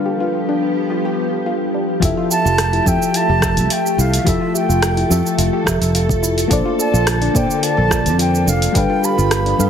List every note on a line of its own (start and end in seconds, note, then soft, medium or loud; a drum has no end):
0.00 2.00 F3 medium
0.00 1.98 G3 medium
0.00 2.00 B3 medium
0.00 1.98 D4 medium
0.00 2.00 G4 medium
0.00 1.99 A4 medium
0.00 2.00 B4 medium
0.00 2.00 F5 medium
0.06 0.14 G4 medium
0.20 0.28 F4 medium
0.49 0.61 D4 medium
0.90 1.03 F4 medium
1.05 1.17 G4 medium
1.46 1.54 F4 medium
1.74 1.88 D4 medium
2.00 2.12 F1 loud
2.00 2.82 F3 medium
2.00 6.47 A3 medium
2.00 2.16 E4 loud
2.00 2.82 F4 medium
2.00 4.24 G4 medium
2.00 2.83 G4 medium
2.00 2.84 A4 medium
2.00 kick loud
2.00 open hi-hat medium
2.00 cabasa soft
2.05 2.84 E5 medium
2.17 2.29 F4 medium
2.31 2.38 G4 medium
2.31 2.89 A5 loud
2.31 cabasa medium
2.45 2.79 F1 medium
2.45 2.52 F4 loud
2.45 cabasa soft
2.58 cross-stick medium
2.58 open hi-hat medium
2.58 cabasa soft
2.73 2.85 E4 loud
2.73 open hi-hat soft
2.85 2.96 F2 medium
2.85 3.39 F3 medium
2.85 3.39 F4 medium
2.85 3.39 G4 medium
2.85 3.40 A4 medium
2.85 3.40 E5 medium
2.85 3.18 G5 loud
2.85 kick loud
2.85 cabasa medium
3.02 cabasa soft
3.14 3.28 F4 medium
3.14 3.74 A5 loud
3.14 open hi-hat medium
3.14 cabasa soft
3.29 3.59 F1 medium
3.29 3.41 G4 loud
3.40 4.22 F3 medium
3.40 4.23 F4 medium
3.40 4.23 G4 medium
3.40 4.24 A4 medium
3.40 kick loud
3.40 cross-stick medium
3.40 cabasa medium
3.45 4.25 E5 medium
3.57 3.66 C2 medium
3.57 open hi-hat soft
3.57 cabasa soft
3.70 3.78 F4 medium
3.70 4.02 G5 loud
3.70 open hi-hat medium
3.70 cabasa soft
3.86 cabasa soft
3.98 4.17 C2 loud
3.98 4.12 E4 medium
3.98 4.29 F5 medium
3.98 cabasa medium
4.14 open hi-hat soft
4.14 cabasa soft
4.24 4.36 F1 loud
4.24 5.06 F3 medium
4.24 4.40 E4 loud
4.24 5.07 F4 medium
4.24 5.07 G4 medium
4.24 8.71 A4 medium
4.24 5.08 A4 medium
4.24 4.55 E5 medium
4.24 kick loud
4.24 open hi-hat medium
4.24 cabasa soft
4.29 5.09 E5 medium
4.41 4.53 F4 medium
4.54 4.62 G4 medium
4.54 5.35 G5 loud
4.54 cabasa medium
4.69 5.03 F1 medium
4.69 4.76 F4 loud
4.69 cabasa soft
4.82 cross-stick medium
4.82 open hi-hat medium
4.82 cabasa soft
4.97 5.09 E4 loud
4.97 open hi-hat soft
5.09 5.20 F2 medium
5.09 5.63 F3 medium
5.09 5.63 F4 medium
5.09 5.63 G4 medium
5.09 5.64 A4 medium
5.09 5.64 E5 medium
5.09 cabasa medium
5.26 cabasa soft
5.38 5.48 F1 loud
5.38 5.52 F4 medium
5.38 open hi-hat medium
5.38 cabasa soft
5.53 5.65 G4 loud
5.64 5.76 F1 medium
5.64 6.46 F3 medium
5.64 6.47 F4 medium
5.64 6.47 G4 medium
5.64 6.48 A4 medium
5.64 kick medium
5.64 cross-stick medium
5.64 cabasa medium
5.69 6.49 E5 medium
5.81 6.43 F1 loud
5.81 open hi-hat soft
5.81 cabasa soft
5.95 6.03 F4 medium
5.95 open hi-hat medium
5.95 cabasa soft
6.09 kick loud
6.09 cabasa soft
6.23 6.37 E4 medium
6.23 cabasa medium
6.38 open hi-hat soft
6.38 cabasa soft
6.48 6.60 A#1 loud
6.48 8.73 D3 medium
6.48 7.30 A#3 medium
6.48 8.73 A#3 medium
6.48 6.64 D4 loud
6.48 7.31 F4 medium
6.48 7.32 A4 medium
6.48 7.32 C5 medium
6.48 kick loud
6.48 open hi-hat medium
6.48 cabasa soft
6.53 7.33 D5 loud
6.65 6.77 F4 loud
6.79 6.87 A4 medium
6.79 7.38 A5 loud
6.79 cabasa medium
6.93 7.28 A#1 medium
6.93 7.01 F4 loud
6.93 cabasa soft
7.07 cross-stick medium
7.07 open hi-hat medium
7.07 cabasa soft
7.22 7.33 D4 loud
7.22 open hi-hat soft
7.34 7.45 A#2 medium
7.34 7.87 A#3 medium
7.34 7.87 F4 medium
7.34 7.88 A4 medium
7.34 7.88 C5 medium
7.34 7.88 D5 medium
7.34 7.65 G5 medium
7.34 kick loud
7.34 cabasa medium
7.51 cabasa soft
7.63 7.76 F4 medium
7.63 8.19 A5 loud
7.63 open hi-hat medium
7.63 cabasa soft
7.77 8.07 A#1 medium
7.77 7.89 A4 loud
7.89 8.71 A#3 medium
7.89 8.71 F4 medium
7.89 8.72 A4 medium
7.89 8.73 C5 medium
7.89 kick loud
7.89 cross-stick medium
7.89 cabasa medium
7.94 8.73 D5 medium
8.06 8.49 F2 medium
8.06 open hi-hat soft
8.06 cabasa soft
8.19 8.27 F4 medium
8.19 8.50 G5 loud
8.19 open hi-hat medium
8.19 cabasa soft
8.35 cabasa soft
8.46 8.66 F1 loud
8.46 8.61 D4 medium
8.46 8.78 F5 medium
8.46 cabasa medium
8.62 open hi-hat soft
8.62 cabasa soft
8.72 8.85 G1 loud
8.72 9.70 F3 medium
8.72 9.55 G3 medium
8.72 9.70 B3 medium
8.72 8.88 D4 loud
8.72 9.55 G4 medium
8.72 9.70 G4 medium
8.72 9.56 A4 medium
8.72 9.57 B4 medium
8.72 9.06 G5 loud
8.72 kick loud
8.72 open hi-hat medium
8.72 cabasa soft
8.78 9.57 F5 medium
8.90 9.02 F4 loud
9.03 9.11 G4 medium
9.03 9.70 B5 loud
9.03 cabasa medium
9.18 9.52 G1 medium
9.18 9.25 F4 loud
9.18 cabasa soft
9.31 cross-stick medium
9.31 open hi-hat medium
9.31 cabasa soft
9.46 9.58 D4 medium
9.46 open hi-hat soft
9.58 9.69 G2 medium
9.58 9.70 G3 medium
9.58 9.70 G4 medium
9.58 9.70 A4 medium
9.58 9.70 B4 medium
9.58 9.70 F5 medium
9.58 cabasa medium